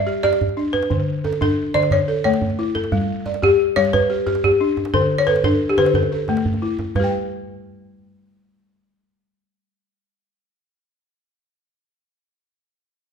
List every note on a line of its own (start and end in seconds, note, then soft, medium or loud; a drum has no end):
0.00 0.21 D5 medium
0.00 0.23 D5 medium
0.07 0.23 G4 medium
0.23 0.57 G4 medium
0.23 0.70 D5 medium
0.23 djembe tone medium
0.33 djembe slap medium
0.41 djembe bass medium
0.49 djembe tone medium
0.57 0.90 D4 medium
0.57 djembe slap soft
0.73 0.89 B4 medium
0.73 djembe tone medium
0.83 djembe slap medium
0.90 1.24 D3 medium
0.90 djembe bass medium
1.00 djembe tone medium
1.24 1.74 A4 medium
1.24 djembe tone medium
1.32 djembe slap medium
1.41 1.74 D4 medium
1.41 1.76 A4 medium
1.41 djembe bass medium
1.50 djembe tone medium
1.74 1.91 D3 medium
1.74 1.90 D5 medium
1.74 djembe tone medium
1.83 djembe slap medium
1.91 2.23 C#5 medium
1.91 djembe bass medium
1.99 djembe tone medium
2.08 2.58 A4 medium
2.24 2.58 A3 medium
2.24 2.76 C#5 medium
2.24 djembe tone medium
2.33 djembe slap medium
2.41 djembe bass medium
2.50 djembe tone soft
2.59 2.92 E4 medium
2.75 2.91 A4 medium
2.75 djembe tone medium
2.84 djembe slap soft
2.92 3.26 G3 medium
2.92 djembe bass medium
3.01 djembe tone soft
3.26 3.76 D5 medium
3.26 djembe tone medium
3.34 djembe slap soft
3.42 3.76 G4 medium
3.42 3.74 G4 medium
3.42 djembe bass medium
3.52 djembe tone medium
3.76 4.10 G3 medium
3.76 3.93 C#5 loud
3.76 4.27 C#5 medium
3.76 djembe tone medium
3.85 djembe slap soft
3.93 4.45 B4 loud
3.93 djembe bass medium
4.01 djembe tone soft
4.10 4.25 G4 medium
4.27 4.60 G4 medium
4.27 djembe tone medium
4.35 djembe slap medium
4.44 4.96 G4 medium
4.44 djembe bass medium
4.52 djembe tone medium
4.61 4.94 D4 medium
4.61 djembe slap soft
4.77 djembe tone medium
4.85 djembe slap medium
4.94 5.28 D3 medium
4.94 5.20 A4 medium
4.94 djembe bass medium
5.02 djembe tone medium
5.18 5.27 C#5 medium
5.27 5.78 A4 medium
5.27 5.44 B4 medium
5.27 djembe tone medium
5.36 djembe slap medium
5.44 5.78 D4 medium
5.44 5.70 A4 medium
5.44 djembe bass medium
5.52 djembe tone medium
5.69 5.78 G4 medium
5.77 5.95 D3 medium
5.77 6.12 G4 medium
5.77 5.95 B4 medium
5.77 djembe tone medium
5.86 djembe slap medium
5.94 6.75 A4 medium
5.94 djembe bass medium
6.03 djembe slap soft
6.03 djembe tone medium
6.12 6.62 A4 medium
6.28 6.62 A3 medium
6.28 djembe tone medium
6.37 djembe slap medium
6.45 djembe slap soft
6.45 djembe bass medium
6.54 djembe tone medium
6.62 6.95 E4 medium
6.70 djembe slap soft
6.79 djembe tone medium
6.95 11.29 G3 medium
6.95 11.25 B4 medium
6.95 djembe bass medium
7.00 11.33 G4 medium
7.04 11.37 G5 medium